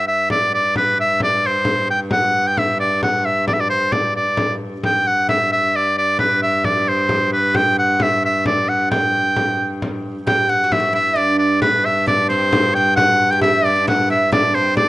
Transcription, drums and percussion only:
0.30 frame drum
0.76 frame drum
0.98 frame drum
1.20 frame drum
1.65 frame drum
2.11 frame drum
2.34 frame drum
2.57 frame drum
3.03 frame drum
3.48 frame drum
3.92 frame drum
4.37 frame drum
4.83 frame drum
5.06 frame drum
5.29 frame drum
6.19 frame drum
6.42 frame drum
6.64 frame drum
7.09 frame drum
7.55 frame drum
7.77 frame drum
8.00 frame drum
8.46 frame drum
8.92 frame drum
9.36 frame drum
9.60 frame drum
9.82 frame drum
10.27 frame drum
10.49 frame drum
10.72 frame drum
11.62 frame drum
11.85 frame drum
12.07 frame drum
12.53 frame drum
12.97 frame drum
13.20 frame drum
13.41 frame drum
13.88 frame drum
14.32 frame drum
14.55 frame drum
14.77 frame drum

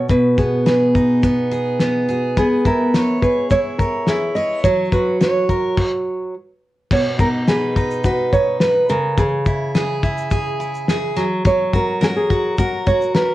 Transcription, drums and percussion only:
0.09 kick, shaker
0.38 kick, shaker
0.67 snare, shaker
0.95 kick, shaker
1.23 kick, shaker
1.52 shaker
1.79 snare, shaker
2.09 shaker
2.37 kick, shaker
2.65 kick, shaker
2.94 snare, shaker
3.22 kick, shaker
3.50 kick, shaker
3.79 kick, shaker
4.07 snare, shaker
4.36 shaker
4.64 kick, shaker
4.92 kick, shaker
5.21 snare, shaker
5.49 kick, shaker
5.77 kick, crash
6.91 kick, crash
7.19 kick, shaker
7.48 snare, shaker
7.76 kick, shaker
7.90 shaker
8.04 kick, shaker
8.33 kick, shaker
8.60 snare, shaker
8.89 shaker
9.18 kick, shaker
9.46 kick, shaker
9.75 snare, shaker
10.03 kick, shaker
10.18 shaker
10.31 kick, shaker
10.61 shaker
10.74 shaker
10.88 snare, shaker
11.17 snare, shaker
11.45 kick, shaker
11.73 kick, shaker
12.03 snare, shaker
12.30 kick, shaker
12.58 kick, shaker
12.87 kick, shaker
13.02 shaker
13.15 snare, shaker

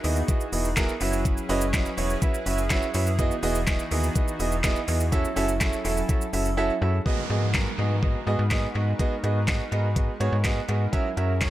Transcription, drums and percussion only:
0.04 open hi-hat, shaker
0.16 shaker
0.28 kick, closed hi-hat, shaker
0.41 shaker
0.53 open hi-hat, shaker
0.65 shaker
0.77 kick, snare, clap, closed hi-hat, shaker
0.89 shaker
1.01 open hi-hat, shaker
1.13 shaker
1.25 kick, closed hi-hat, shaker
1.38 shaker
1.49 open hi-hat, shaker
1.61 shaker
1.74 kick, snare, clap, closed hi-hat, shaker
1.86 shaker
1.98 open hi-hat, shaker
2.10 shaker
2.22 kick, closed hi-hat, shaker
2.34 shaker
2.46 open hi-hat, shaker
2.58 shaker
2.70 kick, snare, clap, closed hi-hat, shaker
2.82 shaker
2.94 open hi-hat, shaker
3.07 shaker
3.19 kick, closed hi-hat, shaker
3.31 shaker
3.43 open hi-hat, shaker
3.55 shaker
3.67 kick, snare, clap, closed hi-hat, shaker
3.79 shaker
3.91 open hi-hat, shaker
4.04 shaker
4.16 kick, closed hi-hat, shaker
4.28 shaker
4.40 open hi-hat, shaker
4.52 shaker
4.64 kick, snare, clap, closed hi-hat, shaker
4.76 shaker
4.88 open hi-hat, shaker
5.00 shaker
5.12 kick, closed hi-hat, shaker
5.25 shaker
5.37 open hi-hat, shaker
5.48 shaker
5.61 kick, snare, clap, closed hi-hat, shaker
5.73 shaker
5.85 open hi-hat, shaker
5.97 shaker
6.09 kick, closed hi-hat, shaker
6.21 shaker
6.33 open hi-hat, shaker
6.45 shaker
7.06 kick
7.54 kick, snare, clap
8.03 kick
8.51 kick, snare, clap
8.99 kick, closed hi-hat
9.24 closed hi-hat
9.48 kick, snare, clap, closed hi-hat
9.72 closed hi-hat
9.96 kick, closed hi-hat
10.21 closed hi-hat
10.44 kick, snare, clap, closed hi-hat
10.69 closed hi-hat
10.93 kick, closed hi-hat
11.17 closed hi-hat
11.41 kick, snare, clap, closed hi-hat

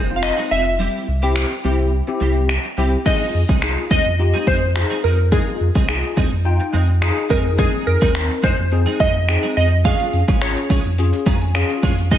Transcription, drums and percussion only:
0.23 finger snap
1.36 finger snap
2.49 finger snap
3.06 kick, crash
3.49 kick
3.62 finger snap
3.91 kick
4.47 kick
4.76 finger snap
5.32 kick
5.75 kick
5.89 finger snap
6.17 kick
7.02 finger snap
7.30 kick
7.59 kick
8.02 kick
8.15 finger snap
8.44 kick
9.00 kick
9.29 finger snap
9.85 kick, closed hi-hat
10.00 closed hi-hat
10.13 closed hi-hat
10.28 kick, closed hi-hat
10.42 finger snap, closed hi-hat
10.57 closed hi-hat
10.70 kick, closed hi-hat
10.85 closed hi-hat
10.98 closed hi-hat
11.13 closed hi-hat
11.26 kick, closed hi-hat
11.42 closed hi-hat
11.55 finger snap, closed hi-hat
11.70 closed hi-hat
11.83 kick, closed hi-hat
11.98 closed hi-hat
12.11 kick, closed hi-hat

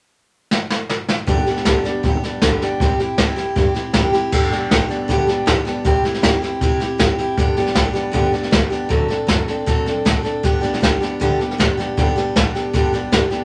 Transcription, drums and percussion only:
0.51 snare
0.70 snare
0.89 snare
1.08 snare
1.27 kick, snare
1.47 snare
1.56 snare
1.65 kick, snare, hi-hat pedal
1.85 snare
2.04 kick, snare
2.23 snare
2.42 kick, snare, hi-hat pedal
2.61 snare
2.80 kick, snare
2.99 snare
3.18 kick, snare, hi-hat pedal
3.37 snare
3.56 kick, snare
3.75 snare
3.93 kick, snare, hi-hat pedal
4.13 snare
4.32 kick, snare, crash
4.52 snare
4.71 kick, snare, hi-hat pedal
4.90 snare
5.09 kick, snare
5.28 snare
5.47 kick, snare, hi-hat pedal
5.66 snare
5.85 kick, snare
6.04 snare
6.14 snare
6.23 kick, snare, hi-hat pedal
6.43 snare
6.61 kick, snare
6.80 snare
6.99 kick, snare, hi-hat pedal
7.18 snare
7.37 kick, snare
7.56 snare
7.66 snare
7.75 kick, snare, hi-hat pedal
7.95 snare
8.14 kick, snare
8.33 snare
8.43 snare
8.52 kick, snare, hi-hat pedal
8.72 snare
8.90 kick, snare
9.10 snare
9.28 kick, snare, hi-hat pedal
9.48 snare
9.67 kick, snare
9.86 snare
10.06 kick, snare, hi-hat pedal
10.25 snare
10.44 kick, snare
10.63 snare
10.73 snare
10.83 kick, snare, hi-hat pedal
11.02 snare
11.21 kick, snare
11.41 snare
11.51 snare
11.60 kick, snare, hi-hat pedal
11.79 snare
11.97 kick, snare
12.17 snare
12.36 kick, snare, hi-hat pedal
12.55 snare
12.74 kick, snare
12.93 snare
13.12 kick, snare, hi-hat pedal
13.31 snare

